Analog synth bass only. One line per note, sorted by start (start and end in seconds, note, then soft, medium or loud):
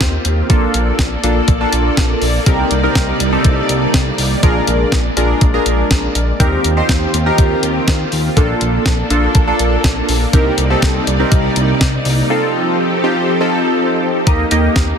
0.01 0.18 D#2 loud
0.25 0.42 D#2 medium
0.50 0.67 A#1 loud
0.74 0.92 A#1 loud
0.99 1.16 A#1 loud
1.23 1.41 A#1 loud
1.48 1.65 A#1 loud
1.73 1.90 A#1 medium
1.97 2.15 A#1 loud
2.22 2.39 A#1 loud
2.47 2.64 C2 loud
2.71 2.88 C2 loud
2.95 3.13 C2 medium
3.20 3.37 C2 loud
3.45 3.62 C2 loud
3.69 3.87 C2 loud
3.94 4.11 C2 loud
4.18 4.36 C2 loud
4.43 4.60 A#1 loud
4.68 4.85 A#1 loud
4.92 5.09 A#1 loud
5.17 5.34 A#1 medium
5.42 5.59 A#1 loud
5.66 5.83 A#1 loud
5.91 6.08 A#1 loud
6.15 6.32 A#1 loud
6.40 6.57 D#2 loud
6.65 6.82 D#2 loud
6.89 7.06 D#2 loud
7.14 7.31 D#2 loud
7.38 7.56 D#2 loud
7.63 7.80 D#2 loud
7.88 8.05 D#2 loud
8.12 8.29 D#2 loud
8.37 8.54 A#1 loud
8.61 8.79 A#1 loud
8.86 9.03 A#1 loud
9.10 9.28 A#1 loud
9.35 9.52 A#1 loud
9.60 9.77 A#1 loud
9.84 10.01 A#1 loud
10.09 10.26 A#1 loud
10.33 10.51 C2 loud
10.58 10.75 C2 loud
10.82 11.00 C2 loud
11.07 11.24 C2 loud
11.32 11.49 C2 loud
11.56 11.73 C2 loud
11.81 11.98 C2 loud
12.06 12.23 C2 loud
14.27 14.44 D#2 loud
14.52 14.69 D#2 loud
14.76 14.93 D#2 loud